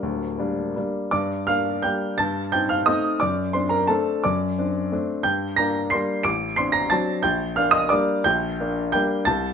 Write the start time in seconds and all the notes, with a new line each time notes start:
Already playing: G4 A#4
0.03 D1 D2
0.39 G3 A#3 D4
0.76 G3 A#3 D4
1.11 G2 D5 D6
1.47 A#3 D4 F5 F6
1.82 G3 A#3 D4 G5 G6
2.18 G2 A5 A6
2.52 C4 D#4 G5 G6
2.69 F5 F6
2.86 A3 C4 D#4 D#5 D#6
3.20 F#2 D5 D6
3.53 C4 D4 C5 C6
3.69 A#4 A#5
3.87 A3 C4 D4 A4 A5
4.24 F#2 D5 D6
4.58 C4 D4
4.92 A3 C4 D4
5.23 G2 G5 G6
5.56 A#3 D4 A#5 A#6
5.90 G3 A#3 D4 C6 C7
6.23 A1 D6 D7
6.56 C4 D4 C6 C7
6.72 A#5 A#6
6.90 F#3 C4 D4 A5 A6
7.23 A#1 G5 G6
7.56 A#3 D4 F5 F6
7.71 D#5 D#6
7.89 G3 A#3 D4 D5 D6
8.24 A#1 G5 G6
8.60 A#3 D4
8.92 G3 A#3 D4 G5 G6
9.25 C2 A5 A6